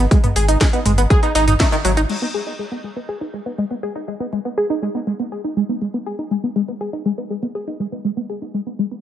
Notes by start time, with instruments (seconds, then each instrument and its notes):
0.11 synth arpeggio sound G#3, kick, closed hi-hat
0.24 synth arpeggio sound B3, closed hi-hat, mid tom
0.36 analog synth bass G#1, synth arpeggio sound G#4, snare, closed hi-hat, open hi-hat
0.48 synth arpeggio sound D#4, closed hi-hat
0.61 synth arpeggio sound G#3, kick, snare, closed hi-hat
0.73 synth arpeggio sound B3, closed hi-hat
0.85 analog synth bass G#1, synth arpeggio sound G#3, closed hi-hat, mid tom, open hi-hat
0.98 synth arpeggio sound B3, closed hi-hat
1.10 synth arpeggio sound G#4, kick, closed hi-hat
1.23 synth arpeggio sound D#4, closed hi-hat
1.35 analog synth bass G#1, synth arpeggio sound D#4, snare, closed hi-hat, open hi-hat
1.48 synth arpeggio sound D#4, closed hi-hat, mid tom
1.60 synth arpeggio sound A3, kick, snare, closed hi-hat, open hi-hat
1.72 synth arpeggio sound D#3, closed hi-hat
1.85 analog synth bass G#1, synth arpeggio sound F#3, closed hi-hat, open hi-hat
1.97 synth arpeggio sound D#4, closed hi-hat
2.09 synth arpeggio sound G#3, crash
2.22 synth arpeggio sound B3
2.34 synth arpeggio sound G#4
2.47 synth arpeggio sound D#4
2.59 synth arpeggio sound G#3
2.72 synth arpeggio sound B3
2.84 synth arpeggio sound G#3
2.96 synth arpeggio sound B3
3.09 synth arpeggio sound G#4
3.21 synth arpeggio sound D#4
3.34 synth arpeggio sound G#3
3.46 synth arpeggio sound B3
3.58 synth arpeggio sound G#3
3.71 synth arpeggio sound B3
3.83 synth arpeggio sound G#4
3.96 synth arpeggio sound D#4
4.08 synth arpeggio sound G#3
4.20 synth arpeggio sound B3
4.33 synth arpeggio sound G#3
4.45 synth arpeggio sound B3
4.58 synth arpeggio sound G#4
4.70 synth arpeggio sound D#4
4.82 synth arpeggio sound G#3
4.95 synth arpeggio sound B3
5.07 synth arpeggio sound G#3
5.20 synth arpeggio sound B3
5.32 synth arpeggio sound G#4
5.44 synth arpeggio sound D#4
5.57 synth arpeggio sound G#3
5.69 synth arpeggio sound B3
5.82 synth arpeggio sound G#3
5.94 synth arpeggio sound B3
6.06 synth arpeggio sound G#4
6.19 synth arpeggio sound D#4
6.31 synth arpeggio sound G#3
6.44 synth arpeggio sound B3
6.56 synth arpeggio sound G#3
6.68 synth arpeggio sound B3
6.81 synth arpeggio sound G#4
6.93 synth arpeggio sound D#4
7.05 synth arpeggio sound G#3
7.18 synth arpeggio sound B3
7.30 synth arpeggio sound G#3
7.43 synth arpeggio sound B3
7.55 synth arpeggio sound G#4
7.67 synth arpeggio sound D#4
7.80 synth arpeggio sound G#3
7.92 synth arpeggio sound B3
8.05 synth arpeggio sound G#3
8.17 synth arpeggio sound B3
8.30 synth arpeggio sound G#4
8.42 synth arpeggio sound D#4
8.54 synth arpeggio sound G#3
8.67 synth arpeggio sound B3
8.79 synth arpeggio sound G#3
8.91 synth arpeggio sound B3